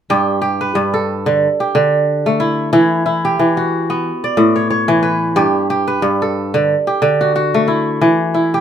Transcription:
0.10 G2 G4
0.42 G4
0.61 B4
0.75 G2
0.94 A4
1.26 D3
1.60 G4
1.75 D3
2.26 A3
2.40 E4
2.73 E3 E4
3.06 E4
3.25 G4
3.39 E3
3.57 F#4
3.90 B3
4.24 D5
4.37 A2
4.56 C#5
4.70 C#5
4.88 E3
5.03 B4
5.36 G2 G4
5.70 G4
5.87 B4
6.02 G2
6.22 A4
6.54 D3
6.87 G4
7.02 D3
7.21 F#4
7.36 F#4
7.54 A3
7.68 E4
8.01 E3
8.34 E4
8.54 G4

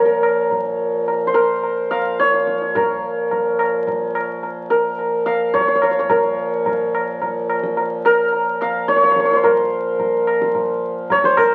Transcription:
Already playing: A#2 F3 C#5 F5
0.05 A#4
0.23 tabla na
0.51 tabla tin, tabla ge
1.08 tabla tin
1.27 C5
1.34 A#4
1.63 tabla tin
1.91 F5, tabla na
2.20 C#5, tabla te
2.34 tabla te
2.47 tabla ke
2.62 tabla te
2.75 A#4, tabla tin, tabla ge
3.31 tabla tin, tabla ge
3.59 tabla na
3.87 tabla tin, tabla ge
4.15 tabla na
4.43 tabla tin
4.70 A#4
4.99 tabla tin
5.26 F5, tabla na
5.54 C#5, tabla tin, tabla ge
5.61 C#5
5.68 C#5
5.75 C#5
5.82 C#5, tabla na
5.91 C#5
5.99 C#5
6.10 A#2 F3 A#4, tabla tin, tabla ge
6.66 tabla tin, tabla ge
6.95 tabla na
7.22 tabla tin, tabla ge
7.50 tabla na
7.63 tabla ke
7.77 tabla tin
8.05 A#4, tabla na
8.33 tabla tin
8.61 F5, tabla na
8.88 C#5, tabla te
8.96 C#5
9.03 C#5, tabla te
9.12 C#5
9.16 C#5, tabla ke
9.25 C#5
9.31 C#5, tabla te
9.36 C5
9.43 A#4, tabla tin, tabla ge
9.99 tabla tin, tabla ge
10.27 tabla na
10.42 tabla ke
10.55 tabla tin, tabla ge
11.10 C#5, tabla tin, tabla ge
11.24 C5, tabla ke
11.37 A#4, tabla na, tabla ge

